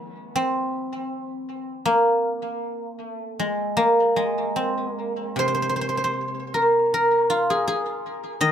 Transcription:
0.00 2.18 D#3 soft
0.00 2.15 F3 soft
0.00 1.80 G#3 soft
0.00 1.60 A#3 medium
0.00 0.35 C4 medium
0.00 0.69 D#4 medium
0.36 3.36 C4 medium
1.85 3.76 A#3 medium
3.40 3.83 G#3 medium
3.77 4.93 A#3 medium
4.16 6.60 G#3 medium
4.56 4.93 C4 medium
4.93 7.56 A#3 medium
5.36 7.68 C3 soft
5.36 5.47 C5 medium
5.48 5.54 C5 medium
5.55 5.62 C5 medium
5.62 5.69 C5 soft
5.69 5.76 C5 medium
5.76 5.81 C5 medium
5.81 5.88 C5 medium
5.89 5.97 C5 soft
5.97 6.04 C5 medium
6.04 8.02 C5 medium
6.54 6.93 A#4 medium
6.94 8.52 A#4 medium
7.30 8.52 F4 medium
7.50 7.67 G#4 medium
7.68 8.52 G#4 medium
8.41 8.52 D#3 medium
8.41 8.52 D#5 medium

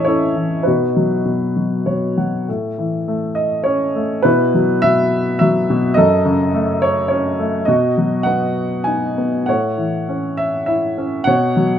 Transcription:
0.00 0.62 A2 soft
0.00 0.36 E3 soft
0.00 0.08 C#4 soft
0.00 0.08 A4 medium
0.00 0.05 C#5 medium
0.00 0.67 D#5 medium
0.00 0.68 E5 medium
0.05 0.65 C#4 soft
0.05 0.63 E4 soft
0.05 0.63 A4 soft
0.05 0.67 C#5 medium
0.36 0.65 E3 soft
0.63 1.24 B2 soft
0.63 1.82 D#4 soft
0.63 1.82 F#4 soft
0.63 1.81 B4 medium
0.96 1.55 F#3 soft
1.25 1.85 B2 soft
1.56 2.16 F#3 soft
1.86 2.46 B2 soft
1.86 2.15 C#5 soft
2.18 2.47 F#3 soft
2.18 2.46 F#5 soft
2.48 4.21 A2 soft
2.78 3.92 E3 soft
3.08 3.94 A3 soft
3.35 3.63 D#5 medium
3.64 4.23 C#4 soft
3.64 4.25 C#5 medium
3.96 4.24 A3 soft
4.22 4.82 B2 medium
4.22 5.09 E4 medium
4.22 4.84 B4 medium
4.54 5.40 F#3 soft
4.82 5.68 B2 soft
4.82 5.37 E5 loud
5.39 5.95 F#3 medium
5.39 5.92 E5 medium
5.70 5.96 B2 medium
5.94 7.64 F#2 medium
5.94 6.79 A4 medium
5.94 6.48 D#5 medium
6.25 7.36 C#3 medium
6.54 7.38 A3 medium
6.82 7.07 C#5 medium
7.08 7.66 C#4 medium
7.08 7.62 C#5 medium
7.39 7.67 A3 medium
7.65 9.44 B2 medium
7.65 8.52 F#4 medium
7.65 8.27 D#5 medium
7.98 9.15 F#3 soft
8.23 9.16 B3 soft
8.23 8.87 F#5 medium
8.84 9.46 D#4 soft
8.84 9.49 G#5 medium
9.18 9.47 B3 soft
9.46 11.23 A2 soft
9.46 10.36 C#5 medium
9.46 10.04 F#5 medium
9.78 10.94 E3 soft
10.09 10.96 C#4 soft
10.37 10.65 E5 medium
10.66 11.25 E4 soft
10.66 11.27 E5 medium
10.98 11.26 C#4 soft
11.24 11.79 B2 medium
11.24 11.79 C#5 medium
11.24 11.79 F#5 medium
11.57 11.79 F#3 soft

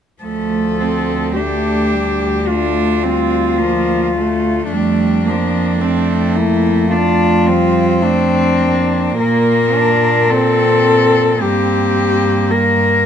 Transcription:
0.22 4.70 D2 soft
0.22 1.38 F3 soft
0.22 0.82 A3 soft
0.22 1.33 A4 soft
0.81 1.38 C4 soft
1.37 1.95 A3 soft
1.37 2.47 D4 soft
1.37 2.50 G4 medium
1.93 2.50 G3 soft
2.48 3.06 A3 soft
2.48 3.05 D4 soft
2.48 4.72 F4 medium
3.03 3.60 G3 soft
3.03 3.60 C4 soft
3.59 4.16 F3 soft
3.59 4.14 A#3 soft
4.15 4.71 A3 soft
4.15 4.74 A3 soft
4.71 9.15 F2 medium
4.71 5.29 G3 medium
4.71 5.25 A3 medium
4.71 6.37 D4 medium
5.25 5.81 F3 soft
5.25 5.82 A#3 medium
5.81 6.92 A3 medium
5.81 6.37 C4 medium
6.36 6.93 A#3 medium
6.36 6.91 E4 medium
6.91 7.48 A3 medium
6.91 7.48 D4 medium
6.91 8.03 F4 medium
7.47 8.03 G3 medium
7.47 9.18 C4 medium
8.02 8.62 A3 medium
8.02 9.18 D4 medium
8.60 10.31 A#3 soft
9.19 11.43 A#2 medium
9.19 9.77 A#3 medium
9.19 10.32 A#4 medium
9.75 10.32 D4 soft
10.30 11.42 C4 medium
10.30 11.40 C4 soft
10.30 11.43 A4 medium
11.41 13.06 G2 soft
11.41 13.06 A#3 medium
11.41 12.52 C4 soft
11.41 12.52 G4 medium
12.51 13.06 A#3 soft
12.51 13.06 A#4 medium

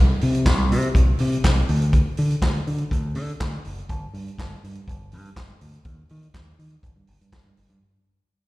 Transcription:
0.00 0.13 C2 loud
0.21 0.48 C3 loud
0.21 open hi-hat medium
0.35 closed hi-hat soft
0.46 0.73 C2 loud
0.46 kick loud
0.46 snare loud
0.46 clap medium
0.46 closed hi-hat medium
0.71 0.87 C3 medium
0.71 open hi-hat medium
0.82 closed hi-hat medium
0.95 1.11 C2 loud
0.95 kick loud
0.95 closed hi-hat medium
1.19 1.36 C3 loud
1.19 open hi-hat medium
1.33 closed hi-hat soft
1.44 1.60 C2 medium
1.44 kick loud
1.44 snare loud
1.44 clap medium
1.44 closed hi-hat medium
1.69 2.01 D2 loud
1.69 open hi-hat medium
1.82 closed hi-hat medium
1.93 kick loud
1.93 closed hi-hat medium
2.17 2.34 D3 loud
2.17 open hi-hat medium
2.30 closed hi-hat soft
2.42 2.58 D2 loud
2.42 kick loud
2.42 snare loud
2.42 clap medium
2.42 closed hi-hat medium
2.67 2.83 D3 medium
2.67 open hi-hat medium
2.78 closed hi-hat medium
2.91 3.16 D2 loud
2.91 kick loud
2.91 closed hi-hat medium
3.15 3.31 D3 loud
3.15 open hi-hat medium
3.29 closed hi-hat medium
3.40 3.56 D2 medium
3.40 kick loud
3.40 snare loud
3.40 clap loud
3.40 closed hi-hat medium
3.65 3.81 F#1 medium
3.65 open hi-hat medium
3.78 closed hi-hat medium
3.89 4.05 G1 loud
3.89 kick loud
3.89 closed hi-hat medium
4.13 4.30 G2 medium
4.13 open hi-hat medium
4.28 closed hi-hat soft
4.38 4.55 G1 loud
4.38 kick loud
4.38 snare loud
4.38 clap medium
4.38 closed hi-hat medium
4.64 4.79 G2 medium
4.64 open hi-hat medium
4.75 closed hi-hat medium
4.88 5.15 G1 loud
4.88 kick loud
4.88 closed hi-hat medium
5.12 5.29 G2 loud
5.12 open hi-hat medium
5.25 closed hi-hat soft
5.36 5.52 G1 medium
5.36 kick loud
5.36 snare loud
5.36 clap medium
5.36 closed hi-hat medium
5.61 5.77 D2 medium
5.61 open hi-hat medium
5.74 closed hi-hat medium
5.85 6.01 D#2 loud
5.85 kick loud
5.85 closed hi-hat medium
6.09 6.26 D#3 loud
6.09 open hi-hat medium
6.23 closed hi-hat soft
6.34 6.50 D#2 loud
6.34 kick loud
6.34 snare loud
6.34 clap medium
6.34 closed hi-hat medium
6.59 6.75 D#3 medium
6.59 open hi-hat medium
6.70 closed hi-hat medium
6.83 6.92 G1 loud
6.83 kick loud
6.83 closed hi-hat medium
6.96 7.04 G2 medium
7.07 7.17 G1 medium
7.07 open hi-hat medium
7.21 7.29 G2 loud
7.21 closed hi-hat soft
7.32 7.41 G1 loud
7.32 kick loud
7.32 snare loud
7.32 clap medium
7.32 closed hi-hat medium
7.46 7.53 G2 medium
7.57 7.66 G1 medium
7.57 open hi-hat medium
7.70 7.77 G2 loud
7.70 closed hi-hat medium

